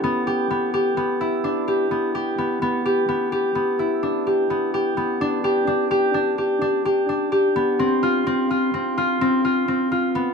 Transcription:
0, 0, Header, 1, 2, 480
1, 0, Start_track
1, 0, Tempo, 470588
1, 37, Time_signature, 11, 3, 24, 8
1, 10545, End_track
2, 0, Start_track
2, 0, Title_t, "Harp"
2, 0, Program_c, 0, 46
2, 0, Note_on_c, 0, 61, 54
2, 0, Note_on_c, 0, 64, 64
2, 0, Note_on_c, 0, 67, 58
2, 0, Note_on_c, 0, 69, 59
2, 37, Note_on_c, 0, 59, 75
2, 271, Note_off_c, 0, 67, 0
2, 275, Note_on_c, 0, 67, 61
2, 511, Note_off_c, 0, 59, 0
2, 515, Note_on_c, 0, 59, 62
2, 748, Note_off_c, 0, 67, 0
2, 752, Note_on_c, 0, 67, 69
2, 986, Note_off_c, 0, 59, 0
2, 990, Note_on_c, 0, 59, 65
2, 1227, Note_off_c, 0, 64, 0
2, 1231, Note_on_c, 0, 64, 63
2, 1318, Note_off_c, 0, 69, 0
2, 1470, Note_on_c, 0, 62, 65
2, 1531, Note_off_c, 0, 61, 0
2, 1706, Note_off_c, 0, 67, 0
2, 1710, Note_on_c, 0, 67, 60
2, 1944, Note_off_c, 0, 59, 0
2, 1948, Note_on_c, 0, 59, 55
2, 2186, Note_off_c, 0, 67, 0
2, 2190, Note_on_c, 0, 67, 60
2, 2427, Note_off_c, 0, 59, 0
2, 2431, Note_on_c, 0, 59, 61
2, 2667, Note_off_c, 0, 59, 0
2, 2671, Note_on_c, 0, 59, 68
2, 2908, Note_off_c, 0, 67, 0
2, 2912, Note_on_c, 0, 67, 65
2, 3143, Note_off_c, 0, 59, 0
2, 3147, Note_on_c, 0, 59, 64
2, 3383, Note_off_c, 0, 67, 0
2, 3387, Note_on_c, 0, 67, 62
2, 3620, Note_off_c, 0, 59, 0
2, 3624, Note_on_c, 0, 59, 60
2, 3863, Note_off_c, 0, 64, 0
2, 3868, Note_on_c, 0, 64, 57
2, 4105, Note_off_c, 0, 62, 0
2, 4109, Note_on_c, 0, 62, 62
2, 4348, Note_off_c, 0, 67, 0
2, 4352, Note_on_c, 0, 67, 55
2, 4588, Note_off_c, 0, 59, 0
2, 4592, Note_on_c, 0, 59, 51
2, 4830, Note_off_c, 0, 67, 0
2, 4834, Note_on_c, 0, 67, 59
2, 5066, Note_off_c, 0, 59, 0
2, 5070, Note_on_c, 0, 59, 59
2, 5311, Note_off_c, 0, 62, 0
2, 5315, Note_on_c, 0, 62, 74
2, 5545, Note_off_c, 0, 67, 0
2, 5549, Note_on_c, 0, 67, 68
2, 5782, Note_off_c, 0, 62, 0
2, 5787, Note_on_c, 0, 62, 75
2, 6022, Note_off_c, 0, 67, 0
2, 6026, Note_on_c, 0, 67, 71
2, 6261, Note_off_c, 0, 62, 0
2, 6265, Note_on_c, 0, 62, 64
2, 6505, Note_off_c, 0, 67, 0
2, 6509, Note_on_c, 0, 67, 59
2, 6531, Note_off_c, 0, 64, 0
2, 6743, Note_off_c, 0, 62, 0
2, 6747, Note_on_c, 0, 62, 69
2, 6987, Note_off_c, 0, 67, 0
2, 6991, Note_on_c, 0, 67, 64
2, 7227, Note_off_c, 0, 62, 0
2, 7231, Note_on_c, 0, 62, 62
2, 7461, Note_off_c, 0, 67, 0
2, 7465, Note_on_c, 0, 67, 68
2, 7705, Note_off_c, 0, 59, 0
2, 7709, Note_on_c, 0, 59, 67
2, 7949, Note_on_c, 0, 60, 78
2, 8011, Note_off_c, 0, 59, 0
2, 8188, Note_on_c, 0, 65, 66
2, 8427, Note_off_c, 0, 60, 0
2, 8431, Note_on_c, 0, 60, 73
2, 8671, Note_off_c, 0, 65, 0
2, 8675, Note_on_c, 0, 65, 69
2, 8909, Note_off_c, 0, 60, 0
2, 8913, Note_on_c, 0, 60, 66
2, 9151, Note_off_c, 0, 65, 0
2, 9155, Note_on_c, 0, 65, 74
2, 9392, Note_off_c, 0, 60, 0
2, 9397, Note_on_c, 0, 60, 78
2, 9631, Note_off_c, 0, 65, 0
2, 9635, Note_on_c, 0, 65, 65
2, 9866, Note_off_c, 0, 67, 0
2, 9871, Note_off_c, 0, 60, 0
2, 9875, Note_on_c, 0, 60, 62
2, 10086, Note_off_c, 0, 62, 0
2, 10110, Note_off_c, 0, 65, 0
2, 10115, Note_on_c, 0, 65, 72
2, 10354, Note_on_c, 0, 59, 67
2, 10416, Note_off_c, 0, 60, 0
2, 10545, Note_off_c, 0, 59, 0
2, 10545, Note_off_c, 0, 65, 0
2, 10545, End_track
0, 0, End_of_file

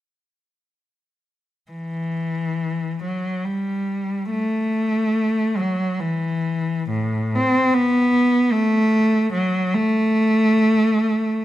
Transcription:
0, 0, Header, 1, 2, 480
1, 0, Start_track
1, 0, Tempo, 500000
1, 10989, End_track
2, 0, Start_track
2, 0, Title_t, "Cello"
2, 0, Program_c, 0, 42
2, 1647, Note_on_c, 0, 52, 38
2, 2873, Note_off_c, 0, 52, 0
2, 2908, Note_on_c, 0, 54, 40
2, 3305, Note_on_c, 0, 55, 41
2, 3314, Note_off_c, 0, 54, 0
2, 4130, Note_on_c, 0, 57, 51
2, 4136, Note_off_c, 0, 55, 0
2, 5329, Note_off_c, 0, 57, 0
2, 5345, Note_on_c, 0, 54, 45
2, 5748, Note_off_c, 0, 54, 0
2, 5758, Note_on_c, 0, 52, 44
2, 6615, Note_on_c, 0, 45, 43
2, 6618, Note_off_c, 0, 52, 0
2, 7036, Note_off_c, 0, 45, 0
2, 7056, Note_on_c, 0, 60, 59
2, 7431, Note_off_c, 0, 60, 0
2, 7433, Note_on_c, 0, 59, 65
2, 8178, Note_off_c, 0, 59, 0
2, 8178, Note_on_c, 0, 57, 65
2, 8942, Note_off_c, 0, 57, 0
2, 8954, Note_on_c, 0, 54, 56
2, 9336, Note_off_c, 0, 54, 0
2, 9349, Note_on_c, 0, 57, 65
2, 10989, Note_off_c, 0, 57, 0
2, 10989, End_track
0, 0, End_of_file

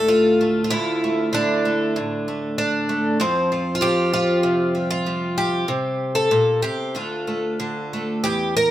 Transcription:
0, 0, Header, 1, 2, 480
1, 0, Start_track
1, 0, Key_signature, -1, "minor"
1, 0, Tempo, 621762
1, 551, Time_signature, 4, 2, 24, 8
1, 4384, Tempo, 640342
1, 6655, End_track
2, 0, Start_track
2, 0, Title_t, "Twelve-string acoustic guitar"
2, 0, Program_c, 0, 25
2, 0, Note_on_c, 0, 38, 71
2, 0, Note_on_c, 0, 45, 53
2, 0, Note_on_c, 0, 50, 59
2, 0, Note_on_c, 0, 57, 35
2, 0, Note_on_c, 0, 69, 91
2, 65, Note_on_c, 0, 65, 80
2, 305, Note_off_c, 0, 57, 0
2, 314, Note_on_c, 0, 57, 47
2, 487, Note_off_c, 0, 65, 0
2, 496, Note_on_c, 0, 65, 63
2, 525, Note_off_c, 0, 57, 0
2, 541, Note_off_c, 0, 69, 0
2, 542, Note_off_c, 0, 38, 0
2, 544, Note_on_c, 0, 64, 90
2, 551, Note_on_c, 0, 38, 71
2, 555, Note_off_c, 0, 45, 0
2, 801, Note_on_c, 0, 57, 45
2, 1016, Note_off_c, 0, 50, 0
2, 1025, Note_on_c, 0, 50, 67
2, 1035, Note_off_c, 0, 65, 0
2, 1038, Note_on_c, 0, 62, 90
2, 1266, Note_off_c, 0, 57, 0
2, 1276, Note_on_c, 0, 57, 45
2, 1513, Note_off_c, 0, 64, 0
2, 1513, Note_on_c, 0, 45, 55
2, 1750, Note_off_c, 0, 57, 0
2, 1759, Note_on_c, 0, 57, 42
2, 1984, Note_off_c, 0, 62, 0
2, 1994, Note_on_c, 0, 62, 81
2, 2222, Note_off_c, 0, 57, 0
2, 2231, Note_on_c, 0, 57, 47
2, 2442, Note_off_c, 0, 57, 0
2, 2465, Note_off_c, 0, 38, 0
2, 2466, Note_off_c, 0, 50, 0
2, 2468, Note_on_c, 0, 41, 74
2, 2470, Note_off_c, 0, 45, 0
2, 2471, Note_off_c, 0, 62, 0
2, 2474, Note_on_c, 0, 53, 55
2, 2477, Note_on_c, 0, 60, 83
2, 2707, Note_off_c, 0, 53, 0
2, 2716, Note_on_c, 0, 53, 51
2, 2895, Note_on_c, 0, 65, 74
2, 2931, Note_off_c, 0, 53, 0
2, 2940, Note_on_c, 0, 53, 65
2, 2949, Note_on_c, 0, 67, 96
2, 3183, Note_off_c, 0, 65, 0
2, 3192, Note_on_c, 0, 65, 92
2, 3373, Note_off_c, 0, 60, 0
2, 3422, Note_on_c, 0, 48, 58
2, 3665, Note_on_c, 0, 55, 43
2, 3666, Note_off_c, 0, 67, 0
2, 3778, Note_off_c, 0, 65, 0
2, 3787, Note_on_c, 0, 65, 87
2, 3901, Note_off_c, 0, 55, 0
2, 3910, Note_on_c, 0, 55, 47
2, 4151, Note_on_c, 0, 67, 84
2, 4353, Note_off_c, 0, 53, 0
2, 4355, Note_off_c, 0, 41, 0
2, 4355, Note_off_c, 0, 48, 0
2, 4386, Note_off_c, 0, 65, 0
2, 4386, Note_on_c, 0, 48, 72
2, 4735, Note_off_c, 0, 67, 0
2, 4738, Note_on_c, 0, 69, 85
2, 4855, Note_off_c, 0, 48, 0
2, 4858, Note_on_c, 0, 46, 65
2, 5090, Note_off_c, 0, 69, 0
2, 5093, Note_on_c, 0, 67, 79
2, 5094, Note_off_c, 0, 46, 0
2, 5103, Note_on_c, 0, 48, 58
2, 5332, Note_off_c, 0, 67, 0
2, 5334, Note_on_c, 0, 38, 60
2, 5335, Note_off_c, 0, 55, 0
2, 5337, Note_off_c, 0, 48, 0
2, 5340, Note_on_c, 0, 50, 43
2, 5343, Note_on_c, 0, 65, 64
2, 5347, Note_on_c, 0, 57, 42
2, 5571, Note_off_c, 0, 57, 0
2, 5580, Note_on_c, 0, 57, 43
2, 5812, Note_off_c, 0, 50, 0
2, 5821, Note_on_c, 0, 50, 62
2, 6064, Note_off_c, 0, 57, 0
2, 6073, Note_on_c, 0, 57, 47
2, 6282, Note_off_c, 0, 57, 0
2, 6301, Note_on_c, 0, 67, 100
2, 6307, Note_off_c, 0, 38, 0
2, 6308, Note_off_c, 0, 50, 0
2, 6310, Note_off_c, 0, 65, 0
2, 6310, Note_on_c, 0, 40, 70
2, 6543, Note_off_c, 0, 67, 0
2, 6548, Note_on_c, 0, 70, 94
2, 6655, Note_off_c, 0, 40, 0
2, 6655, Note_off_c, 0, 70, 0
2, 6655, End_track
0, 0, End_of_file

